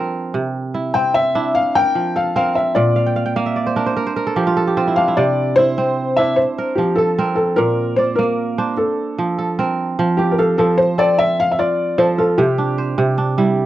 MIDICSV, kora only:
0, 0, Header, 1, 2, 480
1, 0, Start_track
1, 0, Key_signature, -1, "major"
1, 0, Tempo, 401070
1, 411, Time_signature, 12, 3, 24, 8
1, 16347, End_track
2, 0, Start_track
2, 0, Title_t, "Kora"
2, 0, Program_c, 0, 46
2, 0, Note_on_c, 0, 53, 69
2, 0, Note_on_c, 0, 60, 77
2, 0, Note_on_c, 0, 62, 64
2, 0, Note_on_c, 0, 69, 63
2, 0, Note_on_c, 0, 70, 65
2, 0, Note_on_c, 0, 72, 58
2, 146, Note_off_c, 0, 72, 0
2, 408, Note_on_c, 0, 48, 79
2, 470, Note_off_c, 0, 53, 0
2, 731, Note_off_c, 0, 62, 0
2, 890, Note_on_c, 0, 64, 65
2, 1129, Note_off_c, 0, 60, 0
2, 1134, Note_on_c, 0, 60, 81
2, 1265, Note_off_c, 0, 69, 0
2, 1452, Note_off_c, 0, 70, 0
2, 1614, Note_off_c, 0, 64, 0
2, 1616, Note_on_c, 0, 62, 66
2, 1618, Note_on_c, 0, 64, 81
2, 1917, Note_off_c, 0, 48, 0
2, 2097, Note_on_c, 0, 70, 64
2, 2336, Note_on_c, 0, 53, 65
2, 2408, Note_off_c, 0, 64, 0
2, 2581, Note_on_c, 0, 69, 61
2, 2816, Note_off_c, 0, 60, 0
2, 2818, Note_off_c, 0, 70, 0
2, 2821, Note_on_c, 0, 60, 78
2, 2823, Note_on_c, 0, 70, 66
2, 3302, Note_on_c, 0, 46, 87
2, 3363, Note_off_c, 0, 53, 0
2, 3374, Note_off_c, 0, 69, 0
2, 3541, Note_on_c, 0, 77, 58
2, 3626, Note_off_c, 0, 62, 0
2, 3667, Note_on_c, 0, 79, 71
2, 3778, Note_off_c, 0, 77, 0
2, 3782, Note_on_c, 0, 77, 69
2, 3892, Note_off_c, 0, 79, 0
2, 3897, Note_on_c, 0, 79, 71
2, 4019, Note_off_c, 0, 77, 0
2, 4022, Note_on_c, 0, 58, 84
2, 4024, Note_on_c, 0, 77, 78
2, 4141, Note_on_c, 0, 76, 65
2, 4261, Note_on_c, 0, 74, 61
2, 4347, Note_off_c, 0, 70, 0
2, 4386, Note_on_c, 0, 72, 62
2, 4502, Note_on_c, 0, 62, 72
2, 4502, Note_on_c, 0, 70, 63
2, 4619, Note_off_c, 0, 72, 0
2, 4623, Note_on_c, 0, 72, 70
2, 4740, Note_off_c, 0, 70, 0
2, 4745, Note_on_c, 0, 70, 72
2, 4807, Note_off_c, 0, 46, 0
2, 4861, Note_off_c, 0, 72, 0
2, 4866, Note_on_c, 0, 72, 68
2, 4975, Note_off_c, 0, 60, 0
2, 4978, Note_off_c, 0, 70, 0
2, 4983, Note_on_c, 0, 70, 73
2, 5012, Note_off_c, 0, 79, 0
2, 5105, Note_on_c, 0, 69, 69
2, 5177, Note_off_c, 0, 58, 0
2, 5219, Note_off_c, 0, 77, 0
2, 5220, Note_on_c, 0, 53, 75
2, 5222, Note_on_c, 0, 67, 66
2, 5292, Note_off_c, 0, 76, 0
2, 5347, Note_on_c, 0, 65, 80
2, 5460, Note_off_c, 0, 69, 0
2, 5465, Note_on_c, 0, 69, 73
2, 5537, Note_off_c, 0, 70, 0
2, 5587, Note_off_c, 0, 74, 0
2, 5589, Note_off_c, 0, 67, 0
2, 5594, Note_on_c, 0, 67, 57
2, 5706, Note_off_c, 0, 65, 0
2, 5707, Note_on_c, 0, 60, 84
2, 5711, Note_on_c, 0, 65, 69
2, 5834, Note_on_c, 0, 64, 64
2, 5947, Note_off_c, 0, 62, 0
2, 5952, Note_on_c, 0, 62, 61
2, 6074, Note_off_c, 0, 64, 0
2, 6078, Note_on_c, 0, 64, 66
2, 6150, Note_off_c, 0, 65, 0
2, 6191, Note_on_c, 0, 48, 78
2, 6251, Note_off_c, 0, 53, 0
2, 6287, Note_off_c, 0, 72, 0
2, 6675, Note_off_c, 0, 64, 0
2, 6679, Note_on_c, 0, 64, 71
2, 6911, Note_off_c, 0, 60, 0
2, 6916, Note_on_c, 0, 60, 79
2, 7042, Note_off_c, 0, 69, 0
2, 7284, Note_off_c, 0, 67, 0
2, 7391, Note_off_c, 0, 62, 0
2, 7394, Note_off_c, 0, 64, 0
2, 7395, Note_on_c, 0, 62, 57
2, 7398, Note_on_c, 0, 64, 69
2, 7693, Note_off_c, 0, 48, 0
2, 7879, Note_on_c, 0, 70, 72
2, 8115, Note_on_c, 0, 53, 64
2, 8187, Note_off_c, 0, 64, 0
2, 8356, Note_on_c, 0, 69, 64
2, 8594, Note_off_c, 0, 60, 0
2, 8594, Note_off_c, 0, 70, 0
2, 8599, Note_on_c, 0, 60, 81
2, 8599, Note_on_c, 0, 70, 68
2, 9071, Note_on_c, 0, 46, 83
2, 9134, Note_off_c, 0, 53, 0
2, 9143, Note_off_c, 0, 69, 0
2, 9406, Note_off_c, 0, 62, 0
2, 9555, Note_on_c, 0, 74, 61
2, 9796, Note_on_c, 0, 58, 80
2, 10122, Note_off_c, 0, 70, 0
2, 10271, Note_on_c, 0, 62, 73
2, 10271, Note_on_c, 0, 72, 68
2, 10573, Note_off_c, 0, 46, 0
2, 10753, Note_off_c, 0, 60, 0
2, 10881, Note_off_c, 0, 74, 0
2, 10992, Note_on_c, 0, 53, 71
2, 11232, Note_on_c, 0, 69, 61
2, 11303, Note_off_c, 0, 58, 0
2, 11474, Note_on_c, 0, 60, 81
2, 11475, Note_on_c, 0, 70, 68
2, 11693, Note_off_c, 0, 72, 0
2, 11940, Note_off_c, 0, 53, 0
2, 11954, Note_on_c, 0, 53, 89
2, 12190, Note_on_c, 0, 67, 60
2, 12281, Note_off_c, 0, 62, 0
2, 12434, Note_on_c, 0, 77, 69
2, 12657, Note_off_c, 0, 53, 0
2, 12672, Note_on_c, 0, 53, 81
2, 12809, Note_off_c, 0, 69, 0
2, 12998, Note_off_c, 0, 70, 0
2, 13136, Note_off_c, 0, 60, 0
2, 13141, Note_on_c, 0, 60, 74
2, 13144, Note_on_c, 0, 69, 69
2, 13629, Note_off_c, 0, 77, 0
2, 13866, Note_on_c, 0, 65, 69
2, 13881, Note_off_c, 0, 67, 0
2, 14326, Note_off_c, 0, 53, 0
2, 14337, Note_off_c, 0, 69, 0
2, 14340, Note_on_c, 0, 53, 88
2, 14342, Note_on_c, 0, 69, 68
2, 14578, Note_off_c, 0, 65, 0
2, 14582, Note_on_c, 0, 65, 64
2, 14818, Note_on_c, 0, 48, 88
2, 14877, Note_off_c, 0, 53, 0
2, 15058, Note_on_c, 0, 62, 68
2, 15295, Note_off_c, 0, 60, 0
2, 15297, Note_on_c, 0, 72, 68
2, 15519, Note_off_c, 0, 48, 0
2, 15534, Note_on_c, 0, 48, 87
2, 15768, Note_off_c, 0, 62, 0
2, 15772, Note_on_c, 0, 62, 67
2, 15919, Note_off_c, 0, 69, 0
2, 16011, Note_on_c, 0, 55, 79
2, 16013, Note_on_c, 0, 64, 68
2, 16084, Note_off_c, 0, 65, 0
2, 16347, Note_off_c, 0, 48, 0
2, 16347, Note_off_c, 0, 55, 0
2, 16347, Note_off_c, 0, 62, 0
2, 16347, Note_off_c, 0, 64, 0
2, 16347, Note_off_c, 0, 72, 0
2, 16347, End_track
0, 0, End_of_file